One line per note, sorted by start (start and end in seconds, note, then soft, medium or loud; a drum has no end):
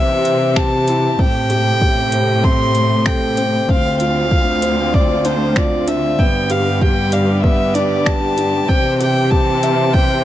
0.00 1.16 C3 loud
0.00 1.17 E3 medium
0.00 1.17 C4 medium
0.00 1.19 C4 medium
0.00 0.56 G4 medium
0.00 3.65 G4 medium
0.00 0.58 E5 loud
0.00 1.21 E5 medium
0.25 closed hi-hat medium
0.56 0.74 G4 medium
0.56 1.21 A5 loud
0.56 finger snap medium
0.56 kick loud
0.88 1.18 E4 medium
0.88 closed hi-hat medium
1.19 3.66 A2 loud
1.19 3.66 C3 medium
1.19 3.66 A3 medium
1.19 1.49 C4 medium
1.19 2.46 G5 loud
1.19 kick loud
1.50 1.68 G4 medium
1.50 closed hi-hat medium
1.81 2.11 G4 medium
1.81 kick loud
2.12 2.43 C5 medium
2.12 closed hi-hat medium
2.44 2.74 C4 medium
2.44 3.08 C6 loud
2.44 kick loud
2.75 closed hi-hat medium
3.06 3.36 A4 medium
3.06 3.71 G5 loud
3.06 finger snap medium
3.06 kick loud
3.37 3.67 C4 medium
3.37 closed hi-hat medium
3.69 6.16 D2 loud
3.69 8.65 D3 medium
3.69 6.16 C4 medium
3.69 3.99 C4 medium
3.69 6.17 F4 medium
3.69 4.01 F5 loud
3.69 kick loud
4.00 4.18 F4 medium
4.00 4.96 F5 loud
4.00 closed hi-hat medium
4.31 4.61 F4 medium
4.31 kick loud
4.62 4.92 C5 medium
4.62 closed hi-hat medium
4.94 5.23 C4 medium
4.94 5.27 D5 loud
4.94 kick loud
5.25 5.43 D4 medium
5.25 5.59 C5 medium
5.25 closed hi-hat medium
5.56 5.74 F4 medium
5.56 5.90 D5 medium
5.56 finger snap medium
5.56 kick loud
5.87 6.17 D4 medium
5.87 6.21 E5 medium
5.87 closed hi-hat medium
6.19 8.66 G2 medium
6.19 6.48 B3 medium
6.19 8.66 B3 medium
6.19 10.24 G4 loud
6.19 6.52 G5 loud
6.19 kick loud
6.50 6.68 G4 medium
6.50 6.84 F5 loud
6.50 closed hi-hat medium
6.81 7.11 G4 medium
6.81 7.15 G5 loud
6.81 kick loud
7.12 7.42 D5 medium
7.12 7.43 F5 medium
7.12 closed hi-hat medium
7.43 7.73 B3 medium
7.43 7.76 E5 loud
7.43 kick loud
7.74 7.93 D4 medium
7.74 8.07 D5 medium
7.74 closed hi-hat medium
8.06 8.24 G4 medium
8.06 8.70 A5 loud
8.06 finger snap medium
8.06 kick loud
8.38 8.67 D4 medium
8.38 closed hi-hat medium
8.68 10.24 C3 loud
8.68 10.24 E3 medium
8.68 8.98 C4 medium
8.68 10.24 C4 medium
8.68 8.99 G5 loud
8.68 kick loud
9.00 9.18 G4 medium
9.00 9.32 G5 loud
9.00 closed hi-hat medium
9.31 9.61 G4 medium
9.31 9.95 A5 loud
9.31 kick loud
9.63 9.93 E5 medium
9.63 closed hi-hat medium
9.94 10.24 C4 medium
9.94 10.24 G5 loud
9.94 kick loud